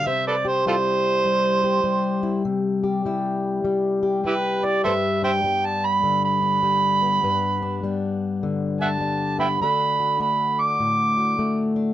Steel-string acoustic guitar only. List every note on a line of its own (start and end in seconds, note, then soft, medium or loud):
0.00 0.66 G3 medium
0.07 2.43 C3 medium
0.07 2.43 C5 medium
0.45 1.64 G4 medium
0.66 1.25 G3 medium
0.66 2.22 E4 soft
1.25 1.84 G3 medium
1.64 2.83 G4 medium
1.84 3.05 G3 medium
2.23 2.42 E4 medium
2.45 4.81 C3 medium
2.83 4.02 G4 medium
3.05 3.64 G3 medium
3.05 4.62 E4 soft
3.64 4.25 G3 medium
4.03 5.22 G4 medium
4.25 5.44 G3 medium
4.64 4.82 E4 medium
4.85 7.23 G2 medium
4.85 7.20 B4 medium
5.23 6.42 D4 medium
5.44 6.62 G3 soft
5.44 7.01 B3 soft
6.04 7.22 D3 medium
6.42 7.62 D4 medium
6.63 7.82 G3 medium
7.02 7.83 B3 soft
7.24 9.61 G2 medium
7.24 9.59 B4 medium
7.62 8.80 D4 medium
7.83 9.00 G3 medium
7.83 9.37 B3 medium
8.43 9.60 D3 medium
8.81 9.62 D4 medium
9.01 9.60 G3 medium
9.38 9.60 B3 medium
9.61 11.94 D3 medium
9.61 10.19 A3 medium
9.61 10.20 D4 medium
9.61 9.99 F#4 medium
9.61 11.94 A4 medium
9.99 11.17 F#4 medium
10.20 11.38 A3 medium
10.20 11.76 D4 medium
10.80 11.94 A2 medium
11.18 11.94 F#4 medium
11.39 11.94 A3 medium
11.76 11.94 D4 soft